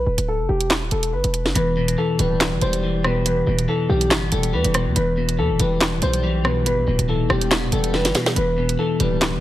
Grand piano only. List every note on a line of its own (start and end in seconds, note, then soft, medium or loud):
0.00 0.25 B4 loud
0.28 0.47 A4 medium
0.49 0.67 G4 medium
0.92 1.10 A4 medium
1.13 1.53 B4 medium
1.55 1.95 B4 loud
1.98 2.17 A4 medium
2.19 2.59 B4 medium
2.62 3.02 C5 medium
3.05 3.23 B4 medium
3.25 3.65 B4 medium
3.69 3.87 A4 medium
3.89 4.08 G4 medium
4.32 4.51 A4 medium
4.53 4.93 B4 medium
4.96 5.36 B4 medium
5.39 5.57 A4 medium
5.60 6.00 B4 medium
6.02 6.42 C5 loud
6.45 6.63 B4 medium
6.66 7.06 B4 loud
7.09 7.27 A4 medium
7.29 7.48 G4 medium
7.73 7.91 A4 medium
7.94 8.34 B4 medium
8.36 8.76 B4 loud
8.79 8.97 A4 medium
9.00 9.40 B4 medium